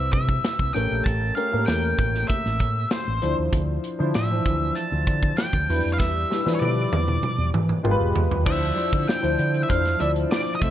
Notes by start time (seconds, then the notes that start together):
Already playing: G3 C4 E4 B4 E5
0.12 C3 E5, kick, closed hi-hat
0.29 kick
0.44 snare, closed hi-hat
0.59 C2, kick
0.74 A1 A3 C#4 G4 A#4 G5, closed hi-hat
0.91 A#1
1.04 A1 A5, kick, closed hi-hat
1.35 A3 C#4 G4 A#4 F5, closed hi-hat
1.52 A2 A3 A#3 G4 A#4
1.59 C#4
1.66 E2 G5, snare, closed hi-hat
1.98 A1, kick, closed hi-hat
2.15 snare
2.28 E5, kick, closed hi-hat
2.46 A1, snare
2.59 A2, kick, closed hi-hat
2.91 C5, snare, closed hi-hat
3.08 A1
3.22 D2 F3 D4 E4 C5, closed hi-hat
3.39 D#2
3.53 D2, kick, closed hi-hat
3.84 closed hi-hat
3.99 D3 F3 D4 E4 C5
4.14 A2 E5, snare, closed hi-hat
4.30 E3 D4 E4 C5
4.36 F3
4.45 D2, kick, closed hi-hat
4.75 A5, closed hi-hat
4.92 D2
5.07 D3, kick, closed hi-hat
5.23 kick
5.37 G5, snare, closed hi-hat
5.53 D2, kick
5.69 E2 F#3 D4 E4 B4, open hi-hat
5.75 G3
5.85 F2
5.93 F5
5.99 E2 E5, kick, snare
6.30 G3 D4 E4 B4, snare
6.45 E3 F3 D4 E4 B4, snare
6.51 G3 C#5
6.60 B2 D5, high tom
6.92 E2, high tom
7.08 mid tom
7.23 mid tom
7.38 E2
7.54 E3, mid tom
7.69 mid tom
7.83 G1 G#3 F4 G4 A#4, mid tom
7.91 B4
8.00 E1
8.15 E2, floor tom
8.31 D#2, floor tom
8.45 D2 F3 D4 E4 C5 E5, kick, crash
8.62 closed hi-hat
8.75 F3 D4 E4 C5, closed hi-hat
8.93 D3, kick, closed hi-hat
9.08 G5, snare
9.22 D2 F3 D4 E4 C5, closed hi-hat
9.39 D3, closed hi-hat
9.54 closed hi-hat
9.63 E5
9.68 F2 F3 D4 E4 C5 F5, kick, closed hi-hat
9.85 snare, closed hi-hat
10.00 D2 F3 D4 E4 D5 E5, closed hi-hat
10.16 closed hi-hat
10.31 D5, snare
10.47 closed hi-hat
10.55 D#5
10.61 C2 A3 D4 D#4 C5 E5, kick, closed hi-hat